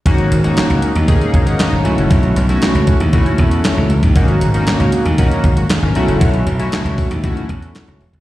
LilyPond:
<<
  \new Staff \with { instrumentName = "Analog polysynth" } { \time 4/4 \key gis \phrygian \tempo 4 = 117 << { r2 r8 cis''16 <ais' fis''>16 <fis' dis''>16 cis''8 r16 | r1 | r2 r8. <ais fis'>16 gis'16 <cis' ais'>8 r16 | r1 | } \\ { <ais cis' dis' fis'>8 r16 <ais cis' dis' fis'>4 r16 <ais cis' dis' gis'>4. <a cis' e' fis'>8~ | <a cis' e' fis'>8 r16 <a cis' e' fis'>4 r16 <a cis' e' fis'>4. r8 | <ais cis' dis' fis'>8 r16 <ais cis' dis' fis'>4 r16 <ais cis' dis' fis'>8 r4 <a cis' e' fis'>8~ | <a cis' e' fis'>8 r16 <a cis' e' fis'>4 r16 <a cis' e' fis'>4. r8 | } >> }
  \new Staff \with { instrumentName = "Slap bass" } { \clef bass \time 4/4 \key gis \phrygian gis,,8 gis,,8 r16 cis,16 r16 dis,8 r16 gis,,8 r16 gis,,16 b,,16 fis,,16 | b,,8 b,,8 r16 cis,16 r16 dis,8 r16 e,8 r16 cis,16 cis,16 dis,16 | gis,,8 gis,,8 r16 cis,16 r16 dis,8 r16 gis,,8 r16 gis,,16 b,,16 fis,,16 | b,,8 b,,8 r16 cis,16 r16 dis,8 r16 e,8 r16 cis,16 e,,16 fis,,16 | }
  \new DrumStaff \with { instrumentName = "Drums" } \drummode { \time 4/4 <hh bd>16 hh16 hh16 hh16 <hc hh sn>16 hh16 hh16 hh16 <hh bd>16 hh16 <hh bd>16 hh16 <hc hh sn>8 hh16 hh16 | <hh bd>16 hh16 hh16 hh16 <hc hh sn>16 hh16 <hh bd>16 hh16 <hh bd>16 hh16 <hh bd>16 hh16 <hc hh sn>8 hh16 <hh bd>16 | <hh bd>16 hh16 hh16 hh16 <hc hh sn>16 hh16 hh16 hh16 <hh bd>16 hh16 <hh bd>16 hh16 <hc hh sn>8 hh16 hh16 | <hh bd>16 hh16 hh16 hh16 <hc hh sn>16 hh16 <hho bd>16 hh16 <hh bd>16 hh16 <hh bd>16 hh16 <hc hh sn>16 hh16 hho16 <hh bd>16 | }
>>